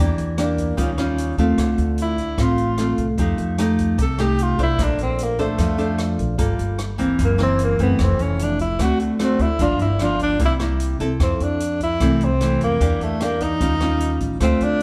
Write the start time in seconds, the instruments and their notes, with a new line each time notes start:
0.00 upright bass E2, nylon-string guitar E3 A#3 D4 G4
0.18 upright bass E2, closed hi-hat
0.38 nylon-string guitar A#3 D4 G4, cross-stick, closed hi-hat
0.43 tenor saxophone A#3
0.58 kick, closed hi-hat
0.77 upright bass D#2, nylon-string guitar D#3 G3 C#4 F4, kick, closed hi-hat
0.82 tenor saxophone C#4
0.98 nylon-string guitar G3 C#4 F4, cross-stick, closed hi-hat
1.18 closed hi-hat
1.38 upright bass D#2, nylon-string guitar A3 C4 F4, kick, closed hi-hat
1.58 upright bass D2, nylon-string guitar D3, kick, cross-stick, closed hi-hat
1.78 upright bass D2, closed hi-hat
1.98 closed hi-hat
2.02 tenor saxophone E4
2.18 kick, closed hi-hat
2.38 upright bass A1, nylon-string guitar A2 A3 C4 F4, kick, cross-stick, closed hi-hat
2.43 tenor saxophone F4
2.58 closed hi-hat
2.78 nylon-string guitar A3 C4 F4, cross-stick, closed hi-hat
2.98 upright bass C2, kick, closed hi-hat
3.18 upright bass F2, nylon-string guitar F3 A3 D#4 G4, kick, closed hi-hat
3.38 upright bass F2, closed hi-hat
3.58 nylon-string guitar A3 D#4 G4, cross-stick, closed hi-hat
3.78 kick, closed hi-hat
3.98 upright bass C2, nylon-string guitar C3, kick, closed hi-hat
4.02 tenor saxophone A4
4.18 nylon-string guitar A3 D#4 G4, tenor saxophone G4, cross-stick, closed hi-hat
4.39 closed hi-hat
4.43 tenor saxophone F4
4.58 upright bass C2, nylon-string guitar D4 A4 C5, kick, closed hi-hat
4.63 tenor saxophone E4
4.79 upright bass A#1, nylon-string guitar A#3, kick, cross-stick, closed hi-hat
4.83 tenor saxophone D4
4.99 upright bass A#1, closed hi-hat
5.03 tenor saxophone C4
5.19 closed hi-hat
5.24 tenor saxophone A#3
5.38 tenor saxophone A3, nylon-string guitar D4 A4 C5, kick, closed hi-hat
5.58 upright bass F2, nylon-string guitar F3, kick, cross-stick, closed hi-hat
5.78 nylon-string guitar D4 A4 C5, closed hi-hat
5.98 cross-stick, closed hi-hat
6.19 upright bass A#1, kick, closed hi-hat
6.38 upright bass G1, nylon-string guitar G3 A#3 F4 A4, kick, closed hi-hat
6.59 upright bass G1, closed hi-hat
6.79 cross-stick, closed hi-hat
6.98 nylon-string guitar E3 A#3 C4, kick, closed hi-hat
7.18 upright bass F#1, nylon-string guitar F#2, kick, closed hi-hat
7.24 tenor saxophone A#3
7.38 nylon-string guitar E3 A#3 C4, cross-stick, closed hi-hat
7.43 tenor saxophone C4
7.59 closed hi-hat
7.64 tenor saxophone A#3
7.79 upright bass F#1, nylon-string guitar E3 A3 C4, kick, closed hi-hat
7.83 tenor saxophone B3
7.99 upright bass F1, nylon-string guitar F2, kick, cross-stick, closed hi-hat
8.04 tenor saxophone C4
8.19 upright bass F1, tenor saxophone C#4, closed hi-hat
8.39 closed hi-hat
8.43 tenor saxophone D4
8.59 tenor saxophone E4, kick, closed hi-hat
8.79 upright bass D2, nylon-string guitar D3 A3 C4 F#4, tenor saxophone F#4, kick, cross-stick, closed hi-hat
9.00 tenor saxophone A3, closed hi-hat
9.19 nylon-string guitar A3 C4 F#4, cross-stick, closed hi-hat
9.24 tenor saxophone C4
9.39 upright bass D2, tenor saxophone E4, kick, closed hi-hat
9.59 upright bass G1, nylon-string guitar G2 F3 A#3 D4, tenor saxophone F4, kick, closed hi-hat
9.79 upright bass G1, tenor saxophone E4, closed hi-hat
9.99 nylon-string guitar F3 A#3 D4, cross-stick, closed hi-hat
10.03 tenor saxophone F4
10.19 tenor saxophone D4, kick, closed hi-hat
10.39 upright bass C2, nylon-string guitar C3 G3 A#3 E4, kick, closed hi-hat
10.45 tenor saxophone E4
10.59 nylon-string guitar G3 A#3 E4, cross-stick, closed hi-hat
10.80 closed hi-hat
11.00 upright bass C2, nylon-string guitar C4 E4 A4, kick, closed hi-hat
11.20 upright bass F2, nylon-string guitar F2, tenor saxophone C4, kick, cross-stick, closed hi-hat
11.40 upright bass F2, tenor saxophone D4, closed hi-hat
11.60 closed hi-hat
11.80 tenor saxophone E4, kick, closed hi-hat
12.00 upright bass C2, nylon-string guitar C3 E3 A3 C4, kick, cross-stick, closed hi-hat
12.21 tenor saxophone C4, closed hi-hat
12.41 nylon-string guitar E3 A3 C4, cross-stick, closed hi-hat
12.61 upright bass F2, tenor saxophone A#3, kick, closed hi-hat
12.81 upright bass E2, nylon-string guitar E3 A#3 D4 G4, kick, closed hi-hat
13.00 upright bass E2, tenor saxophone A3, closed hi-hat
13.21 nylon-string guitar A#3 D4 G4, tenor saxophone A#3, cross-stick, closed hi-hat
13.40 tenor saxophone D#4, kick, closed hi-hat
13.61 upright bass D#2, nylon-string guitar D#3 G3 C#4 F4, kick, closed hi-hat
13.80 nylon-string guitar G3 C#4 F4, cross-stick, closed hi-hat
14.00 closed hi-hat
14.20 upright bass A1, kick, closed hi-hat
14.40 upright bass D2, nylon-string guitar D3 A3 C4 F4, tenor saxophone C4, kick, cross-stick, closed hi-hat
14.61 upright bass D2, tenor saxophone D4, closed hi-hat